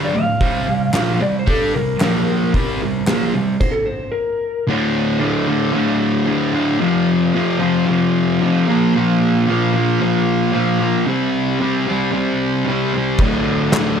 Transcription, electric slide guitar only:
0, 0, Header, 1, 2, 480
1, 0, Start_track
1, 0, Key_signature, -1, "minor"
1, 0, Tempo, 532860
1, 371, Time_signature, 4, 2, 24, 8
1, 12611, End_track
2, 0, Start_track
2, 0, Title_t, "Electric slide guitar"
2, 0, Program_c, 0, 29
2, 41, Note_on_c, 0, 74, 90
2, 142, Note_on_c, 0, 77, 105
2, 143, Note_off_c, 0, 74, 0
2, 1067, Note_off_c, 0, 77, 0
2, 1103, Note_on_c, 0, 74, 100
2, 1213, Note_off_c, 0, 74, 0
2, 1254, Note_on_c, 0, 72, 92
2, 1347, Note_on_c, 0, 69, 89
2, 1349, Note_off_c, 0, 72, 0
2, 1571, Note_off_c, 0, 69, 0
2, 1577, Note_on_c, 0, 70, 122
2, 2977, Note_off_c, 0, 70, 0
2, 3247, Note_on_c, 0, 72, 84
2, 3348, Note_on_c, 0, 69, 99
2, 3364, Note_off_c, 0, 72, 0
2, 3474, Note_off_c, 0, 69, 0
2, 3475, Note_on_c, 0, 72, 91
2, 3708, Note_on_c, 0, 70, 105
2, 3715, Note_off_c, 0, 72, 0
2, 4183, Note_off_c, 0, 70, 0
2, 12611, End_track
0, 0, End_of_file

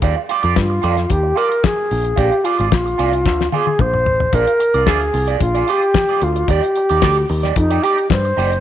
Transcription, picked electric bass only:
0, 0, Header, 1, 2, 480
1, 0, Start_track
1, 0, Tempo, 538117
1, 22, Time_signature, 4, 2, 24, 8
1, 7672, End_track
2, 0, Start_track
2, 0, Title_t, "Picked electric bass"
2, 0, Program_c, 0, 34
2, 21, Note_on_c, 0, 39, 84
2, 123, Note_off_c, 0, 39, 0
2, 390, Note_on_c, 0, 41, 76
2, 480, Note_off_c, 0, 41, 0
2, 506, Note_on_c, 0, 43, 88
2, 696, Note_off_c, 0, 43, 0
2, 746, Note_on_c, 0, 41, 91
2, 936, Note_off_c, 0, 41, 0
2, 986, Note_on_c, 0, 39, 84
2, 1176, Note_off_c, 0, 39, 0
2, 1707, Note_on_c, 0, 34, 86
2, 1897, Note_off_c, 0, 34, 0
2, 1944, Note_on_c, 0, 34, 96
2, 2046, Note_off_c, 0, 34, 0
2, 2314, Note_on_c, 0, 32, 81
2, 2431, Note_off_c, 0, 32, 0
2, 2431, Note_on_c, 0, 34, 80
2, 2619, Note_off_c, 0, 34, 0
2, 2666, Note_on_c, 0, 36, 74
2, 2906, Note_off_c, 0, 36, 0
2, 2906, Note_on_c, 0, 38, 74
2, 3097, Note_off_c, 0, 38, 0
2, 3388, Note_on_c, 0, 34, 87
2, 3622, Note_off_c, 0, 34, 0
2, 3622, Note_on_c, 0, 33, 89
2, 3814, Note_off_c, 0, 33, 0
2, 3865, Note_on_c, 0, 34, 95
2, 3966, Note_off_c, 0, 34, 0
2, 4229, Note_on_c, 0, 36, 81
2, 4347, Note_off_c, 0, 36, 0
2, 4347, Note_on_c, 0, 38, 92
2, 4537, Note_off_c, 0, 38, 0
2, 4581, Note_on_c, 0, 36, 83
2, 4774, Note_off_c, 0, 36, 0
2, 4825, Note_on_c, 0, 34, 76
2, 5016, Note_off_c, 0, 34, 0
2, 5547, Note_on_c, 0, 38, 85
2, 5737, Note_off_c, 0, 38, 0
2, 5783, Note_on_c, 0, 39, 93
2, 5885, Note_off_c, 0, 39, 0
2, 6159, Note_on_c, 0, 39, 80
2, 6246, Note_off_c, 0, 39, 0
2, 6267, Note_on_c, 0, 38, 88
2, 6457, Note_off_c, 0, 38, 0
2, 6508, Note_on_c, 0, 39, 89
2, 6698, Note_off_c, 0, 39, 0
2, 6750, Note_on_c, 0, 41, 88
2, 6939, Note_off_c, 0, 41, 0
2, 7228, Note_on_c, 0, 43, 93
2, 7418, Note_off_c, 0, 43, 0
2, 7469, Note_on_c, 0, 30, 90
2, 7672, Note_off_c, 0, 30, 0
2, 7672, End_track
0, 0, End_of_file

